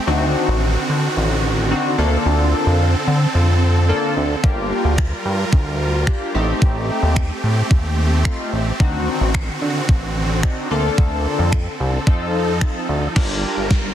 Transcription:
Already playing: supersaw synth C4
0.07 analog synth bass D2, supersaw synth D3 D#3 F#4, analog polysynth C4 D4 D#4 F#4
0.48 analog synth bass A1
0.89 analog synth bass D3
1.17 analog synth bass A1
1.71 analog polysynth C4 D4 D#4 F#4
1.98 analog synth bass D2, analog polysynth A#3 D4 F4 A4, supersaw synth C4 A4
2.26 analog synth bass D2
2.67 analog synth bass F2
3.07 analog synth bass D3
3.35 analog synth bass F2
3.89 analog polysynth A#3 D4 F4 A4
4.16 analog synth bass D2
4.43 analog synth bass G1, analog polysynth A#3 D4 F4 G4, supersaw synth F4 A#4, kick
4.85 analog synth bass D2
4.98 finger snap, kick
5.25 analog synth bass G2
5.53 analog synth bass D2, kick
6.07 analog polysynth A#3 D4 F4 G4, finger snap, kick
6.34 analog synth bass A1, analog polysynth A3 C4 D#4 G4, supersaw synth A3 C4 G4
6.62 analog synth bass A1, kick
7.03 analog synth bass D#2
7.16 finger snap, kick
7.44 analog synth bass A2
7.71 analog synth bass D#2, kick
8.25 analog polysynth A3 C4 D#4 F4, finger snap, kick
8.53 analog synth bass A1
8.80 analog synth bass D2, supersaw synth D3 D#3 F#4, analog polysynth C4 D4 D#4 F#4, kick
9.21 analog synth bass A1
9.34 finger snap, kick
9.62 analog synth bass D3
9.89 analog synth bass A1, kick
10.43 analog polysynth C4 D4 D#4 F#4, finger snap, kick
10.71 analog synth bass D2, analog polysynth A#3 D4 F4 A4, supersaw synth A4
10.98 analog synth bass D2, kick
11.39 analog synth bass F2
11.52 finger snap, kick
11.80 analog synth bass C2
12.07 analog synth bass F2, supersaw synth F3 A4, analog polysynth C4 D#4 F4 A4, kick
12.61 analog polysynth C4 D#4 F4 A4, finger snap, kick
12.89 analog synth bass D2
13.16 analog synth bass G1, supersaw synth G3 F4 A#4, analog polysynth D4 F4 G4 A#4, kick, snare, crash
13.57 analog synth bass G1
13.71 kick, snare

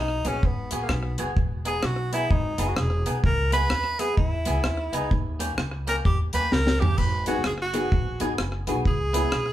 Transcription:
Already playing: upright bass B1
0.00 tenor saxophone D#4
0.25 upright bass A#1, clean electric guitar B3 F#4 G#4, tenor saxophone C#4, closed hi-hat
0.43 upright bass G#1, tenor saxophone B3, kick
0.71 upright bass A#1, clean electric guitar B3 F#4 G#4, closed hi-hat
0.83 tenor saxophone A#3
0.89 upright bass B1, tenor saxophone B3, cross-stick
1.18 upright bass F#1, clean electric guitar B3 F#4 G#4, closed hi-hat
1.37 upright bass E1, kick
1.65 clean electric guitar B3 D#4 G#4, tenor saxophone G#4, closed hi-hat
1.83 upright bass B1, tenor saxophone F#4, cross-stick
2.13 clean electric guitar B3 D#4 G#4, tenor saxophone E4, closed hi-hat
2.31 upright bass G#1, tenor saxophone D#4, kick
2.58 upright bass F#1, clean electric guitar B3 D#4 G#4, closed hi-hat
2.68 tenor saxophone F#4
2.76 upright bass E1, tenor saxophone G#4, cross-stick
3.06 upright bass B1, clean electric guitar B3 D#4 G#4, closed hi-hat
3.23 upright bass C#2, tenor saxophone A#4, kick
3.52 clean electric guitar B3 E4 G#4, tenor saxophone B4, closed hi-hat
3.70 upright bass D#2, cross-stick
3.99 clean electric guitar B3 E4 G#4, tenor saxophone G#4, closed hi-hat
4.17 upright bass E2, tenor saxophone E4, kick
4.45 upright bass C#2, clean electric guitar B3 E4 G#4, closed hi-hat
4.64 upright bass D#2, cross-stick
4.93 upright bass C#2, clean electric guitar B3 E4 G#4, tenor saxophone D#4, closed hi-hat
5.11 upright bass D#2, kick
5.39 clean electric guitar A#3 C#4 G4, closed hi-hat
5.57 upright bass C#2, cross-stick
5.87 clean electric guitar A#3 C#4 G4, tenor saxophone A#4, closed hi-hat
6.05 upright bass E2, tenor saxophone G4, kick
6.33 upright bass D#2, clean electric guitar A#3 C#4 G4, tenor saxophone B4, closed hi-hat
6.51 upright bass C#2, tenor saxophone A#4, snare
6.67 snare
6.80 upright bass G1, clean electric guitar A#3 C#4 G4, tenor saxophone G4, floor tom
6.98 upright bass G#1, tenor saxophone B4, kick, splash
7.26 upright piano B3 D#4 F#4 G#4, clean electric guitar B3 F#4 G#4, tenor saxophone F#4, closed hi-hat
7.44 upright bass F#1, tenor saxophone G#4, cross-stick
7.62 tenor saxophone F#4
7.73 upright piano B3 D#4 F#4 G#4, clean electric guitar B3 F#4 G#4, closed hi-hat
7.92 upright bass A#1, kick
8.20 upright bass G#1, clean electric guitar B3 F#4 G#4, upright piano B3 D#4 F#4 G#4, closed hi-hat
8.38 upright bass F#1, upright piano F#4 G#4, cross-stick
8.67 upright bass B1, clean electric guitar B3 F#4 G#4, upright piano B3 D#4 F#4 G#4, closed hi-hat
8.85 upright bass C#2, tenor saxophone G#4, kick
9.13 clean electric guitar B3 E4 G#4, upright piano B3 C#4 E4 G#4, closed hi-hat
9.32 upright bass B1, cross-stick

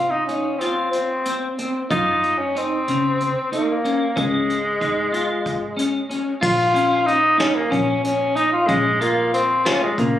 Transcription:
Already playing: double bass C2, tenor saxophone F4
0.10 tenor saxophone D#4
0.26 tenor saxophone C#4, clean electric guitar D#4, closed hi-hat
0.59 tenor saxophone C4, clean electric guitar F4, closed hi-hat
0.91 tenor saxophone C4, closed hi-hat
1.25 clean electric guitar C4, closed hi-hat
1.58 clean electric guitar C4, closed hi-hat
1.90 double bass F#2, tenor saxophone D#4, clean electric guitar F4, kick, closed hi-hat
2.23 closed hi-hat
2.39 tenor saxophone C#4
2.55 tenor saxophone C4, clean electric guitar D#4, closed hi-hat
2.88 clean electric guitar C#3, closed hi-hat
3.20 closed hi-hat
3.52 tenor saxophone A#3, clean electric guitar D#4, closed hi-hat
3.84 clean electric guitar C#4, closed hi-hat
4.16 double bass C#2, tenor saxophone G#3, clean electric guitar C#4, kick, closed hi-hat
4.50 closed hi-hat
4.80 clean electric guitar D#4, kick, closed hi-hat
5.12 clean electric guitar F4, closed hi-hat
5.46 kick, closed hi-hat
5.77 clean electric guitar C#4, closed hi-hat
6.09 clean electric guitar C#4, closed hi-hat
6.41 double bass A#1, clean electric guitar F4, tenor saxophone F4, kick, crash
6.74 clean electric guitar C#4, closed hi-hat
7.06 tenor saxophone D#4, closed hi-hat
7.38 tenor saxophone C#4, clean electric guitar D#4, snare, closed hi-hat
7.55 tenor saxophone A#3
7.70 double bass A#1, clean electric guitar C#4, tenor saxophone C#4, kick, closed hi-hat
8.04 tenor saxophone C#4, closed hi-hat
8.35 clean electric guitar D#4, tenor saxophone D#4, closed hi-hat
8.52 tenor saxophone F4
8.67 double bass A#1, tenor saxophone G#3, clean electric guitar C#4, kick, closed hi-hat
9.01 tenor saxophone A#3, clean electric guitar F4, closed hi-hat
9.34 tenor saxophone C4, closed hi-hat
9.65 tenor saxophone C#4, clean electric guitar F4, snare, closed hi-hat
9.83 tenor saxophone G#3
9.98 double bass A#2, clean electric guitar C#3, tenor saxophone A#3, kick, closed hi-hat

